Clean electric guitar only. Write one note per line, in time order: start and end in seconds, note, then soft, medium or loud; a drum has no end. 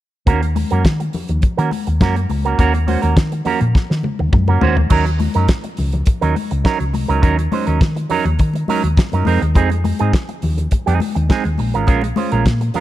0.26 0.45 A#3 medium
0.26 0.42 C#4 medium
0.26 0.41 F#4 medium
0.26 0.41 A#4 medium
0.42 muted clean electric guitar stroke soft
0.55 muted clean electric guitar stroke soft
0.71 0.84 A#3 soft
0.71 0.84 C#4 soft
0.71 0.84 F#4 medium
0.71 0.84 A#4 medium
0.85 muted clean electric guitar stroke soft
1.00 muted clean electric guitar stroke soft
1.29 muted clean electric guitar stroke soft
1.42 muted clean electric guitar stroke soft
1.57 1.70 A#3 medium
1.57 1.70 C#4 medium
1.57 1.71 F#4 medium
1.57 1.71 A#4 medium
1.71 muted clean electric guitar stroke soft
1.87 muted clean electric guitar stroke medium
2.01 2.19 A#3 medium
2.01 2.16 C#4 medium
2.01 2.16 F#4 medium
2.01 2.15 A#4 medium
2.16 muted clean electric guitar stroke soft
2.30 muted clean electric guitar stroke soft
2.45 2.57 A#3 soft
2.45 2.58 C#4 soft
2.45 2.59 F#4 medium
2.45 2.58 A#4 medium
2.58 2.77 A#3 medium
2.58 2.74 C#4 medium
2.58 2.73 F#4 medium
2.58 2.73 A#4 medium
2.74 muted clean electric guitar stroke soft
2.87 3.02 A#3 medium
2.87 3.02 C#4 medium
2.87 3.01 F#4 medium
2.87 3.02 C5 medium
3.02 3.15 A#3 soft
3.02 3.15 C#4 soft
3.02 3.16 F#4 medium
3.02 3.16 A#4 medium
3.16 muted clean electric guitar stroke soft
3.32 muted clean electric guitar stroke soft
3.45 3.64 A#3 medium
3.45 3.61 C#4 medium
3.45 3.61 F#4 medium
3.45 3.60 A#4 medium
3.61 muted clean electric guitar stroke soft
3.74 muted clean electric guitar stroke soft
3.90 muted clean electric guitar stroke soft
4.19 muted clean electric guitar stroke medium
4.33 muted clean electric guitar stroke soft
4.48 4.60 A#3 soft
4.48 4.61 C#4 medium
4.48 4.61 F#4 medium
4.48 4.61 A#4 medium
4.61 4.80 A#3 medium
4.61 4.77 C#4 loud
4.61 4.77 F#4 medium
4.61 4.77 C5 loud
4.77 muted clean electric guitar stroke soft
4.90 5.09 F#3 medium
4.90 5.06 C#4 medium
4.90 5.05 D#4 medium
4.90 5.05 A#4 loud
5.06 muted clean electric guitar stroke soft
5.19 muted clean electric guitar stroke soft
5.35 5.47 F#3 soft
5.35 5.48 C#4 medium
5.35 5.48 D#4 medium
5.35 5.48 A#4 medium
5.49 muted clean electric guitar stroke soft
5.64 muted clean electric guitar stroke soft
5.93 muted clean electric guitar stroke soft
6.06 muted clean electric guitar stroke soft
6.21 6.35 F#3 medium
6.21 6.35 C#4 medium
6.21 6.35 D#4 medium
6.21 6.36 A#4 medium
6.36 muted clean electric guitar stroke soft
6.51 muted clean electric guitar stroke medium
6.64 6.83 F#3 medium
6.64 6.80 C#4 medium
6.64 6.79 D#4 medium
6.64 6.78 A#4 loud
6.80 muted clean electric guitar stroke soft
6.94 muted clean electric guitar stroke soft
7.08 7.20 F#3 medium
7.08 7.21 C#4 medium
7.08 7.22 D#4 medium
7.08 7.22 A#4 medium
7.22 7.41 F#3 medium
7.22 7.38 C#4 medium
7.22 7.37 D#4 medium
7.22 7.37 A#4 medium
7.38 muted clean electric guitar stroke soft
7.52 7.67 F#3 medium
7.52 7.67 C#4 medium
7.52 7.66 D#4 medium
7.52 7.66 C5 medium
7.67 7.80 F#3 medium
7.67 7.80 C#4 medium
7.67 7.81 D#4 medium
7.67 7.80 A#4 medium
7.81 muted clean electric guitar stroke soft
7.96 muted clean electric guitar stroke soft
8.09 8.28 F#3 medium
8.09 8.26 C#4 medium
8.09 8.25 D#4 medium
8.09 8.24 A#4 medium
8.25 muted clean electric guitar stroke soft
8.39 muted clean electric guitar stroke soft
8.55 muted clean electric guitar stroke soft
8.68 8.87 F#3 medium
8.68 8.84 C#4 medium
8.68 8.83 D#4 medium
8.68 8.83 A#4 medium
8.84 muted clean electric guitar stroke soft
8.97 muted clean electric guitar stroke soft
9.13 9.26 F#3 medium
9.13 9.26 C#4 medium
9.13 9.26 D#4 medium
9.13 9.26 A#4 medium
9.26 9.45 G#3 medium
9.26 9.42 C4 medium
9.26 9.41 D#4 medium
9.26 9.41 A#4 medium
9.42 muted clean electric guitar stroke soft
9.55 9.74 G#3 medium
9.55 9.70 C4 medium
9.55 9.70 D#4 medium
9.55 9.69 G#4 loud
9.70 muted clean electric guitar stroke soft
9.84 muted clean electric guitar stroke soft
9.99 10.12 G#3 soft
9.99 10.12 C4 medium
9.99 10.12 D#4 medium
9.99 10.13 G#4 medium
10.13 muted clean electric guitar stroke soft
10.29 muted clean electric guitar stroke medium
10.57 muted clean electric guitar stroke soft
10.71 muted clean electric guitar stroke soft
10.86 10.99 G#3 medium
10.86 11.00 C4 medium
10.86 11.00 D#4 medium
10.86 11.00 G#4 medium
11.01 muted clean electric guitar stroke soft
11.15 muted clean electric guitar stroke medium
11.29 11.48 G#3 medium
11.29 11.44 C4 medium
11.29 11.44 D#4 medium
11.29 11.43 G#4 loud
11.45 muted clean electric guitar stroke soft
11.59 muted clean electric guitar stroke soft
11.74 11.86 G#3 medium
11.74 11.86 C#4 medium
11.74 11.87 F4 medium
11.74 11.87 A#4 medium
11.87 12.06 G#3 medium
11.87 12.03 C#4 loud
11.87 12.02 F4 loud
11.87 12.02 A#4 medium
12.03 muted clean electric guitar stroke medium
12.16 12.31 G#3 medium
12.16 12.32 C#4 medium
12.16 12.32 F4 medium
12.16 12.32 C5 medium
12.32 12.45 G#3 medium
12.32 12.45 C#4 medium
12.32 12.45 F4 medium
12.32 12.45 A#4 medium
12.61 muted clean electric guitar stroke medium
12.74 12.80 G#3 medium
12.74 12.80 C#4 medium
12.74 12.80 F4 medium
12.74 12.80 A#4 medium